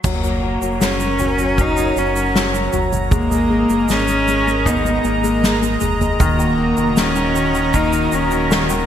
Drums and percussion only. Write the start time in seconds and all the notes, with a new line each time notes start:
0.04 kick, floor tom, crash, shaker
0.24 shaker
0.62 shaker
0.81 snare, shaker
1.00 shaker
1.19 floor tom, shaker
1.38 shaker
1.58 kick, floor tom, shaker
1.77 shaker
1.97 shaker
2.16 shaker
2.36 snare, shaker
2.54 shaker
2.73 floor tom, shaker
2.93 floor tom, shaker
3.11 kick, floor tom, shaker
3.32 shaker
3.69 shaker
3.89 snare, shaker
4.08 shaker
4.28 shaker
4.48 shaker
4.65 kick, floor tom, shaker
4.86 shaker
5.04 shaker
5.24 shaker
5.44 snare, shaker
5.63 shaker
5.81 floor tom, shaker
6.01 floor tom, shaker
6.20 kick, floor tom, shaker
6.40 shaker
6.77 shaker
6.97 snare, shaker
7.16 shaker
7.36 shaker
7.55 shaker
7.73 kick, floor tom, shaker
7.93 shaker
8.12 shaker
8.31 shaker
8.51 snare, shaker
8.69 shaker